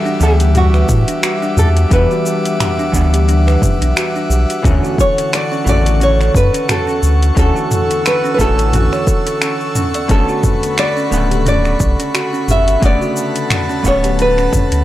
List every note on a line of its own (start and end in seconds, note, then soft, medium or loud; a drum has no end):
0.00 0.17 E3 medium
0.00 0.17 G3 medium
0.00 4.60 G3 medium
0.00 0.18 B3 medium
0.00 0.18 D4 medium
0.00 0.19 F#4 loud
0.00 0.18 A4 medium
0.00 4.60 E5 medium
0.00 10.05 F#5 medium
0.00 4.60 D6 medium
0.05 0.19 D4 loud
0.05 shaker soft
0.19 0.85 D2 medium
0.19 1.87 E3 medium
0.19 1.87 G3 medium
0.19 1.88 B3 medium
0.19 1.89 D4 medium
0.19 0.57 G4 medium
0.19 1.89 F#5 medium
0.19 shaker medium
0.40 0.54 G4 medium
0.40 closed hi-hat medium
0.40 shaker soft
0.55 0.72 D4 medium
0.55 1.58 F#4 medium
0.55 closed hi-hat soft
0.55 mid tom medium
0.55 shaker soft
0.74 0.88 B4 medium
0.74 finger snap soft
0.74 shaker soft
0.89 1.05 A2 loud
0.89 kick medium
0.89 shaker medium
1.08 1.22 D4 medium
1.08 closed hi-hat medium
1.08 shaker soft
1.23 1.41 F#4 loud
1.23 finger snap loud
1.23 closed hi-hat soft
1.23 shaker soft
1.42 1.56 D4 medium
1.42 shaker soft
1.57 1.86 E2 loud
1.57 1.75 G4 medium
1.57 1.68 A4 loud
1.57 mid tom medium
1.57 shaker medium
1.77 closed hi-hat medium
1.77 shaker soft
1.90 2.07 E2 loud
1.90 2.89 E3 medium
1.90 2.90 G3 medium
1.90 2.90 B3 medium
1.90 2.10 D4 medium
1.90 2.91 D4 medium
1.90 3.25 B4 loud
1.90 2.91 F#5 medium
1.90 kick loud
1.90 closed hi-hat soft
1.90 shaker soft
2.11 2.25 F#4 medium
2.11 shaker soft
2.26 shaker medium
2.45 closed hi-hat medium
2.45 shaker soft
2.60 finger snap loud
2.60 closed hi-hat soft
2.60 mid tom medium
2.60 shaker soft
2.79 2.92 D4 loud
2.79 shaker soft
2.92 3.57 D2 medium
2.92 4.60 E3 medium
2.92 4.60 G3 medium
2.92 4.61 B3 medium
2.92 4.61 D4 medium
2.92 4.62 F#5 loud
2.92 kick medium
2.92 shaker medium
3.13 3.27 G4 medium
3.13 closed hi-hat medium
3.13 shaker soft
3.28 3.45 D4 medium
3.28 closed hi-hat soft
3.28 shaker soft
3.47 3.61 B4 medium
3.47 finger snap soft
3.47 shaker soft
3.62 kick loud
3.62 mid tom medium
3.62 shaker medium
3.81 3.93 B1 medium
3.81 3.95 D4 medium
3.81 closed hi-hat medium
3.81 shaker soft
3.96 4.14 F#4 loud
3.96 finger snap loud
3.96 closed hi-hat soft
3.96 shaker soft
4.16 4.29 D4 loud
4.16 shaker soft
4.30 4.46 B1 loud
4.30 4.48 G4 medium
4.30 shaker medium
4.50 closed hi-hat medium
4.50 shaker soft
4.62 4.80 D2 medium
4.62 5.64 D3 medium
4.62 5.62 E3 medium
4.62 5.62 A3 medium
4.62 5.63 C#4 medium
4.62 4.82 C#4 medium
4.62 14.84 A4 medium
4.62 12.79 C#6 medium
4.62 kick loud
4.62 closed hi-hat soft
4.62 mid tom medium
4.62 shaker soft
4.67 5.64 F#4 loud
4.84 4.98 F#4 medium
4.84 shaker soft
4.98 5.34 C#5 loud
4.98 kick loud
4.98 shaker medium
5.18 closed hi-hat medium
5.18 shaker soft
5.33 5.68 D5 loud
5.33 finger snap loud
5.33 closed hi-hat soft
5.33 shaker soft
5.52 5.65 C#4 medium
5.52 shaker soft
5.64 6.30 A1 loud
5.64 7.33 C#3 medium
5.64 7.34 D3 medium
5.64 7.32 E3 medium
5.64 7.33 A3 medium
5.64 7.34 F#4 medium
5.64 mid tom medium
5.64 shaker medium
5.69 6.03 D5 loud
5.85 6.00 A4 medium
5.85 closed hi-hat medium
5.85 shaker soft
6.00 6.18 C#4 medium
6.00 6.36 C#5 loud
6.00 closed hi-hat soft
6.00 shaker soft
6.19 6.34 C#5 medium
6.19 finger snap soft
6.19 shaker soft
6.34 6.50 F#2 loud
6.34 6.71 B4 loud
6.34 kick loud
6.34 shaker medium
6.54 6.68 C#4 medium
6.54 closed hi-hat medium
6.54 shaker soft
6.69 6.87 F#4 loud
6.69 7.38 A4 loud
6.69 finger snap loud
6.69 closed hi-hat soft
6.69 mid tom medium
6.69 shaker soft
6.87 7.01 C#4 medium
6.87 shaker soft
7.02 7.31 D2 loud
7.02 7.21 A4 medium
7.02 shaker medium
7.23 closed hi-hat soft
7.23 shaker soft
7.35 7.52 D2 medium
7.35 8.36 D3 medium
7.35 8.34 E3 medium
7.35 8.35 A3 medium
7.35 7.55 C#4 medium
7.35 8.35 C#4 medium
7.35 10.07 E6 medium
7.35 kick loud
7.35 closed hi-hat soft
7.35 shaker medium
7.39 8.37 F#4 medium
7.39 8.07 A4 loud
7.55 7.70 F#4 medium
7.55 shaker soft
7.71 mid tom medium
7.71 shaker medium
7.91 closed hi-hat medium
7.91 shaker soft
8.06 8.33 B4 medium
8.06 finger snap loud
8.06 closed hi-hat soft
8.06 shaker soft
8.24 8.38 C#4 loud
8.24 shaker soft
8.34 10.05 E3 medium
8.34 10.05 A3 medium
8.34 8.40 B4 medium
8.39 8.72 A1 medium
8.39 10.07 D3 medium
8.39 10.06 C#4 medium
8.39 10.07 F#4 medium
8.39 8.75 A4 medium
8.39 kick medium
8.39 shaker medium
8.58 8.72 A4 medium
8.58 closed hi-hat medium
8.58 shaker soft
8.73 8.89 A1 loud
8.73 8.91 C#4 medium
8.73 9.72 F#4 medium
8.73 closed hi-hat soft
8.73 mid tom medium
8.73 shaker soft
8.92 9.07 C#5 medium
8.92 finger snap soft
8.92 shaker soft
9.07 9.18 A4 loud
9.07 kick loud
9.07 shaker medium
9.27 9.35 A4 medium
9.27 closed hi-hat medium
9.27 shaker soft
9.42 9.52 C#4 medium
9.42 finger snap medium
9.42 closed hi-hat soft
9.42 shaker soft
9.60 shaker soft
9.75 9.94 C#4 medium
9.75 mid tom medium
9.75 shaker medium
9.94 10.09 D5 medium
9.94 closed hi-hat medium
9.94 shaker soft
10.08 10.25 G1 medium
10.08 11.07 D3 medium
10.08 11.08 A3 medium
10.08 11.08 B3 medium
10.08 10.28 C#4 medium
10.08 11.09 C#4 medium
10.08 11.09 F#4 medium
10.08 10.79 A4 medium
10.08 14.84 F#5 medium
10.08 14.84 B5 medium
10.08 kick loud
10.08 closed hi-hat soft
10.08 shaker soft
10.29 10.43 F#4 medium
10.29 shaker soft
10.43 kick loud
10.43 mid tom medium
10.43 shaker medium
10.63 closed hi-hat medium
10.63 shaker soft
10.78 11.47 D5 loud
10.78 finger snap loud
10.78 closed hi-hat soft
10.78 shaker soft
10.97 11.10 C#4 loud
10.97 shaker soft
11.10 11.76 D1 loud
11.10 12.79 C#3 medium
11.10 12.78 D3 medium
11.10 12.78 A3 medium
11.10 12.79 B3 medium
11.10 12.80 F#5 medium
11.10 shaker medium
11.31 11.45 G4 medium
11.31 closed hi-hat medium
11.31 shaker soft
11.46 11.63 C#4 medium
11.46 12.51 D5 loud
11.46 closed hi-hat soft
11.46 mid tom medium
11.46 shaker soft
11.65 11.79 C#4 medium
11.65 finger snap soft
11.65 shaker soft
11.80 11.96 B1 loud
11.80 kick loud
11.80 shaker medium
11.99 12.13 C#4 medium
11.99 closed hi-hat medium
11.99 shaker soft
12.14 12.32 F#4 medium
12.14 finger snap loud
12.14 closed hi-hat soft
12.14 shaker soft
12.33 12.47 C#4 loud
12.33 shaker soft
12.48 12.77 G1 loud
12.48 12.66 G4 medium
12.48 12.81 E5 loud
12.48 mid tom medium
12.48 shaker medium
12.68 closed hi-hat medium
12.68 shaker soft
12.80 12.98 G1 medium
12.80 13.81 C#3 medium
12.80 13.80 D3 medium
12.80 13.81 A3 medium
12.80 13.81 B3 medium
12.80 13.01 C#4 medium
12.80 14.84 A5 medium
12.80 kick loud
12.80 closed hi-hat soft
12.80 shaker soft
12.84 13.87 D5 loud
12.84 13.82 F#5 medium
13.01 13.16 F#4 medium
13.01 shaker soft
13.17 shaker medium
13.36 closed hi-hat medium
13.36 shaker soft
13.50 finger snap loud
13.50 closed hi-hat soft
13.50 mid tom medium
13.50 shaker soft
13.70 13.83 C#4 medium
13.70 shaker soft
13.83 14.48 D1 loud
13.83 14.84 D3 medium
13.83 14.84 A3 medium
13.83 14.84 B3 medium
13.83 14.84 C#4 medium
13.83 14.84 F#5 medium
13.83 kick medium
13.83 shaker medium
13.88 14.18 C#5 loud
14.04 14.18 G4 medium
14.04 closed hi-hat medium
14.04 shaker soft
14.19 14.36 C#4 medium
14.19 14.84 B4 medium
14.19 closed hi-hat soft
14.19 shaker soft
14.38 14.52 C#4 medium
14.38 finger snap soft
14.38 shaker soft
14.53 kick medium
14.53 mid tom medium
14.53 shaker medium
14.72 14.84 D2 medium
14.72 14.84 C#4 medium
14.72 closed hi-hat medium
14.72 shaker soft